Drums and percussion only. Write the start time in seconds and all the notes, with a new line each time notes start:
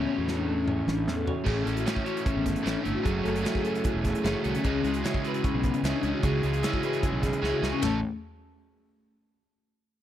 0.28 snare
0.68 mid tom
0.88 snare
1.08 snare
1.27 floor tom
1.46 kick, crash
1.67 closed hi-hat
1.77 closed hi-hat
1.86 snare, closed hi-hat
1.96 kick
2.06 closed hi-hat
2.17 closed hi-hat
2.26 kick, closed hi-hat
2.46 kick, snare, closed hi-hat
2.56 closed hi-hat
2.66 snare, closed hi-hat
2.85 closed hi-hat
3.06 kick, closed hi-hat
3.25 closed hi-hat
3.36 closed hi-hat
3.45 snare, closed hi-hat
3.55 kick
3.65 closed hi-hat
3.75 closed hi-hat
3.84 kick, closed hi-hat
4.04 kick, snare, closed hi-hat
4.15 closed hi-hat
4.24 snare, closed hi-hat
4.44 closed hi-hat
4.55 closed hi-hat
4.64 kick, closed hi-hat
4.84 closed hi-hat
4.94 closed hi-hat
5.04 snare, closed hi-hat
5.14 kick
5.25 closed hi-hat
5.34 closed hi-hat
5.44 kick, closed hi-hat
5.63 kick, closed hi-hat
5.74 closed hi-hat
5.84 snare, closed hi-hat
6.03 closed hi-hat
6.23 kick, closed hi-hat
6.43 closed hi-hat
6.53 closed hi-hat
6.63 snare, closed hi-hat
6.73 kick
6.83 closed hi-hat
6.93 closed hi-hat
7.03 kick, closed hi-hat
7.23 kick, snare, closed hi-hat
7.33 closed hi-hat
7.44 snare
7.63 snare
7.83 snare, floor tom, ride bell